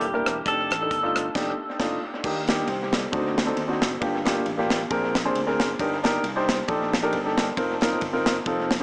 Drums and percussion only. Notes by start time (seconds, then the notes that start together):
0.01 closed hi-hat
0.26 cross-stick, closed hi-hat
0.46 kick, closed hi-hat
0.71 cross-stick, closed hi-hat
0.91 kick, closed hi-hat
1.16 cross-stick, closed hi-hat
1.35 kick, snare, crash
1.80 kick, snare, crash
2.24 kick, crash
2.47 snare, ride
2.67 ride
2.93 snare, ride
3.13 kick, ride
3.38 snare, ride
3.57 ride
3.82 snare, ride
4.02 kick, ride
4.25 snare, ride
4.46 ride
4.70 snare, ride
4.90 kick, ride
5.15 snare, ride
5.35 ride
5.60 snare, ride
5.79 kick, ride
6.04 snare, ride
6.24 ride
6.49 snare, ride
6.68 kick, ride
6.93 snare, ride
7.13 ride
7.38 snare, ride
7.57 kick, ride
7.81 snare, ride
8.01 kick, ride
8.26 snare, ride
8.46 kick, ride
8.71 snare, ride